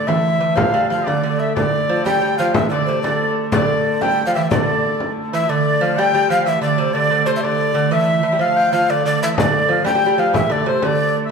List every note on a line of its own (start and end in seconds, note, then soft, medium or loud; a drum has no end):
0.00 1.56 D3 medium
0.00 1.57 A3 medium
0.07 0.39 E3 medium
0.07 0.58 E5 medium
0.07 frame drum medium
0.41 0.58 E3 medium
0.56 0.73 F3 medium
0.56 0.89 F5 medium
0.56 0.90 F5 medium
0.56 frame drum medium
0.74 0.90 G3 medium
0.89 1.07 F3 medium
0.89 1.06 F5 medium
0.89 1.09 F5 medium
0.89 frame drum soft
1.05 1.22 D3 medium
1.05 1.22 D5 medium
1.05 1.41 D5 medium
1.05 frame drum medium
1.23 1.56 D3 medium
1.23 1.40 D5 medium
1.39 1.55 E5 medium
1.55 5.50 D3 medium
1.55 1.90 D3 medium
1.55 5.50 A3 medium
1.55 2.07 D5 medium
1.55 2.02 D5 medium
1.55 frame drum medium
1.89 2.06 F3 medium
2.05 2.20 G3 medium
2.05 2.40 G5 medium
2.05 2.36 G5 loud
2.05 frame drum medium
2.22 2.39 G3 medium
2.38 2.56 F3 medium
2.38 2.54 F5 medium
2.54 2.71 E3 medium
2.54 2.62 E5 medium
2.54 2.69 E5 medium
2.54 frame drum loud
2.70 2.86 D3 medium
2.70 2.85 D5 medium
2.70 3.02 D5 medium
2.86 3.04 C3 medium
2.86 3.02 C5 medium
3.02 3.35 D3 medium
3.02 3.30 D5 medium
3.02 3.35 D5 medium
3.02 frame drum medium
3.52 4.03 D3 medium
3.52 4.03 D5 medium
3.52 3.83 D5 medium
3.52 frame drum loud
4.02 4.26 G3 medium
4.02 4.26 G5 medium
4.02 4.25 G5 medium
4.02 frame drum medium
4.26 4.35 F3 medium
4.26 4.34 F5 medium
4.35 4.52 E3 medium
4.35 4.50 E5 medium
4.35 4.42 E5 medium
4.51 5.13 D3 medium
4.51 5.12 D5 medium
4.51 5.13 D5 medium
4.51 frame drum loud
5.00 frame drum medium
5.17 frame drum soft
5.33 5.49 E3 medium
5.33 5.50 E5 medium
5.33 5.51 E5 medium
5.49 5.83 D3 medium
5.49 9.40 D3 medium
5.49 9.38 A3 medium
5.49 5.81 D5 medium
5.49 6.01 D5 medium
5.81 5.98 F3 medium
5.81 5.99 F5 medium
5.97 6.13 G3 medium
5.97 6.31 G5 loud
6.14 6.30 G3 medium
6.30 6.47 F3 medium
6.30 6.45 F5 medium
6.30 6.46 F5 medium
6.45 6.61 E3 medium
6.45 6.61 E5 medium
6.45 6.62 E5 medium
6.62 6.78 D3 medium
6.62 6.92 D5 medium
6.62 6.80 D5 medium
6.78 6.94 C3 medium
6.78 6.95 C5 medium
6.94 7.09 D3 medium
6.94 7.26 D5 loud
6.94 7.29 D5 medium
7.11 7.26 D3 medium
7.26 7.44 C3 medium
7.26 7.31 C5 medium
7.26 7.46 C5 medium
7.36 7.42 E5 medium
7.41 7.73 D3 medium
7.41 7.94 D5 medium
7.41 7.91 D5 medium
7.74 7.91 D3 medium
7.91 8.22 E3 medium
7.91 8.37 E5 medium
7.91 8.43 E5 loud
8.23 8.34 E3 medium
8.32 8.39 G3 medium
8.39 8.72 F3 medium
8.39 8.72 F5 medium
8.39 8.58 F5 medium
8.57 8.75 G5 medium
8.73 8.90 F3 medium
8.73 8.92 F5 medium
8.90 9.04 D3 medium
8.90 9.05 D5 medium
8.90 9.06 D5 medium
9.05 9.22 D3 medium
9.05 9.21 D5 medium
9.23 9.37 E3 medium
9.23 9.40 E5 medium
9.23 9.29 E5 medium
9.38 9.71 D3 medium
9.38 11.31 D3 medium
9.38 11.31 A3 medium
9.38 9.72 D5 medium
9.38 9.84 D5 medium
9.38 frame drum medium
9.69 9.84 F3 medium
9.69 9.89 F5 medium
9.84 9.94 G3 medium
9.84 10.21 G5 loud
9.84 10.21 G5 medium
9.84 frame drum medium
9.95 10.05 G3 medium
10.06 10.18 G3 medium
10.18 10.35 F3 medium
10.18 10.34 F5 medium
10.33 10.49 E3 medium
10.33 10.53 E5 medium
10.33 frame drum medium
10.50 10.66 D3 medium
10.50 10.67 D5 medium
10.50 10.64 D5 medium
10.64 10.82 C3 medium
10.64 10.70 D5 medium
10.68 10.85 C5 medium
10.68 10.87 C5 medium
10.82 11.12 D3 medium
10.82 11.15 D5 medium
10.82 11.16 D5 medium
10.82 frame drum medium
11.26 11.31 E5 medium